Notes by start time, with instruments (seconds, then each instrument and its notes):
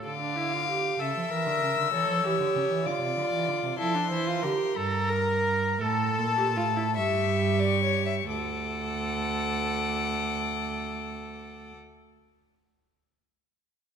0.05 cello D3, viola A4, violin F5 D6
0.20 viola D4
0.36 viola E4
0.53 viola F4
0.68 viola G4
0.99 cello C#3, viola A4, violin E5 E6
1.15 cello F3
1.30 cello E3, viola A#4
1.47 cello D3
1.62 cello C#3
1.78 cello D3
1.93 cello E3, viola A4, violin C#5
2.09 cello F3
2.24 cello E3, viola G4
2.40 cello D3
2.55 cello C#3
2.71 cello E3
2.85 cello D3, viola F4, violin D5 D6
3.02 cello C3
3.17 cello D3
3.33 cello E3
3.48 cello D3
3.64 cello C3
3.79 cello F3, viola E4, violin A4 C6
3.95 viola D4
4.10 cello E3, viola E4, violin C5
4.27 viola F4
4.41 cello D3, viola G4, violin A#4
4.77 cello G2, viola A4, violin A#5
5.10 viola A#4
5.81 cello A2, violin A4 A5, viola A4
6.18 cello A#2
6.37 viola G4
6.56 cello A2, viola F4
6.76 viola E4
6.96 cello G2, viola G4, violin E5 C#6
7.60 violin D5
7.83 violin C#5
8.06 violin E5
8.29 cello D2, viola A4, violin F#5 D6